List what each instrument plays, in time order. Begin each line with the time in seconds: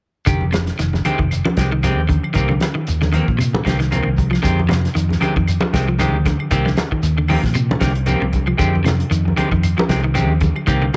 0.26 fingered electric bass F1, clean electric guitar D3 D#3 G4, muted clean electric guitar stroke, kick, closed hi-hat, shekere
0.41 high conga
0.52 clean electric guitar C3, muted clean electric guitar stroke, snare, closed hi-hat, high conga, claves, shekere
0.67 snare, closed hi-hat
0.79 fingered electric bass F1, clean electric guitar D#3, muted clean electric guitar stroke, snare, closed hi-hat, shekere
0.93 muted clean electric guitar stroke, snare, high conga
1.05 clean electric guitar D3 D#3 G#3 C4 G4, muted fingered electric bass stroke, closed hi-hat, high conga, claves, shekere
1.19 fingered electric bass F1, clean electric guitar D#3, muted clean electric guitar stroke, kick
1.31 closed hi-hat, claves, shekere
1.45 clean electric guitar F3, muted clean electric guitar stroke, high conga
1.57 fingered electric bass C2, clean electric guitar D#3 G#3 C4 G4, kick, snare, closed hi-hat, shekere
1.72 clean electric guitar D#3, muted clean electric guitar stroke
1.83 clean electric guitar D#3 G#3 C4 G4, muted clean electric guitar stroke, closed hi-hat, high conga, claves, shekere
1.98 fingered electric bass D#2
2.09 clean electric guitar D3, muted clean electric guitar stroke, kick, closed hi-hat, high conga, shekere
2.23 muted clean electric guitar stroke, claves
2.34 fingered electric bass C2, clean electric guitar D#3 A#3 C4 G4, kick, closed hi-hat, shekere
2.49 clean electric guitar D3, high conga
2.60 muted clean electric guitar stroke, snare, closed hi-hat, high conga, claves, shekere
2.75 clean electric guitar D#3
2.87 fingered electric bass D#2, muted clean electric guitar stroke, closed hi-hat, shekere
3.01 clean electric guitar D3, muted clean electric guitar stroke, snare, high conga
3.13 clean electric guitar D#3 A#3 C4, closed hi-hat, high conga, claves, shekere
3.28 fingered electric bass A#2, muted clean electric guitar stroke, kick
3.38 clean electric guitar C3, closed hi-hat, claves, shekere
3.53 muted clean electric guitar stroke, high conga
3.65 fingered electric bass C2, clean electric guitar D3 D#3 A#3 C4 G4, kick, snare, closed hi-hat, shekere
3.79 clean electric guitar D#3, muted clean electric guitar stroke, snare, closed hi-hat
3.91 clean electric guitar D#3 A#3 C4, muted clean electric guitar stroke, closed hi-hat, high conga, claves, shekere
4.03 fingered electric bass C2, clean electric guitar D#3
4.17 muted clean electric guitar stroke, kick, closed hi-hat, high conga, shekere
4.31 clean electric guitar F3, muted clean electric guitar stroke, snare, claves
4.42 fingered electric bass F2, clean electric guitar D3 D#3 G#3 C4 G4, kick, closed hi-hat, shekere
4.59 high conga
4.68 clean electric guitar C3, muted clean electric guitar stroke, snare, closed hi-hat, high conga, claves, shekere
4.85 snare, closed hi-hat
4.95 fingered electric bass F2, clean electric guitar D#3, muted clean electric guitar stroke, closed hi-hat, shekere
5.09 muted clean electric guitar stroke, snare, high conga
5.20 clean electric guitar D3 D#3 G#3 C4 G4, muted fingered electric bass stroke, closed hi-hat, high conga, claves, shekere
5.36 fingered electric bass F2, clean electric guitar D#3, kick
5.48 closed hi-hat, claves, shekere
5.61 clean electric guitar F3, muted clean electric guitar stroke, high conga
5.73 fingered electric bass C2, clean electric guitar D#3 G#3 C4 G4, kick, snare, closed hi-hat, shekere
5.86 clean electric guitar F3, muted clean electric guitar stroke
5.99 clean electric guitar D#3 G#3 C4 G4, closed hi-hat, high conga, claves, shekere
6.14 fingered electric bass D2
6.25 clean electric guitar D3, muted clean electric guitar stroke, kick, snare, closed hi-hat, high conga, shekere
6.39 muted clean electric guitar stroke, claves
6.51 fingered electric bass C2, clean electric guitar D#3 A#3 C4 G4, kick, closed hi-hat, shekere
6.66 clean electric guitar D3, snare, high conga
6.76 muted clean electric guitar stroke, snare, closed hi-hat, high conga, claves, shekere
6.92 clean electric guitar D#3, kick
7.03 fingered electric bass D#2, muted clean electric guitar stroke, closed hi-hat, shekere
7.17 clean electric guitar D3, muted clean electric guitar stroke
7.28 clean electric guitar D#3 A#3 C4 G4, open hi-hat, high conga, claves, shekere
7.43 fingered electric bass A#2, muted clean electric guitar stroke, kick, snare
7.55 clean electric guitar C3, closed hi-hat, claves, shekere
7.69 muted clean electric guitar stroke, high conga
7.80 fingered electric bass C2, clean electric guitar D3 D#3 A#3 C4 G4, kick, snare, closed hi-hat, shekere
7.94 muted clean electric guitar stroke, closed hi-hat
8.06 clean electric guitar D#3 A#3 C4 G4, closed hi-hat, high conga, claves, shekere
8.22 fingered electric bass C2, clean electric guitar C3
8.32 muted clean electric guitar stroke, kick, closed hi-hat, high conga, shekere
8.46 clean electric guitar F3, muted clean electric guitar stroke, claves
8.57 fingered electric bass F2, clean electric guitar D3 D#3 G#3 C4 G4, kick, closed hi-hat, shekere
8.75 high conga
8.84 clean electric guitar C3, muted clean electric guitar stroke, snare, closed hi-hat, high conga, claves, shekere
9.00 closed hi-hat
9.10 fingered electric bass F2, clean electric guitar D#3, muted clean electric guitar stroke, closed hi-hat, shekere
9.25 muted clean electric guitar stroke, high conga
9.36 clean electric guitar D3 D#3 G#3 C4 G4, muted fingered electric bass stroke, closed hi-hat, high conga, claves, shekere
9.51 fingered electric bass F2, clean electric guitar D#3, muted clean electric guitar stroke, kick
9.63 closed hi-hat, claves, shekere
9.77 clean electric guitar F3, muted clean electric guitar stroke, high conga
9.89 fingered electric bass C2, clean electric guitar D#3 G#3 C4 G4, kick, snare, closed hi-hat, shekere
10.03 clean electric guitar D#3, muted clean electric guitar stroke
10.14 clean electric guitar D#3 G#3 C4 G4, closed hi-hat, high conga, claves, shekere
10.29 fingered electric bass D#2
10.41 clean electric guitar D3, muted clean electric guitar stroke, kick, closed hi-hat, high conga, shekere
10.56 muted clean electric guitar stroke, claves
10.67 fingered electric bass C2, clean electric guitar D#3 A#3 C4 G4, kick, closed hi-hat, shekere
10.82 clean electric guitar D3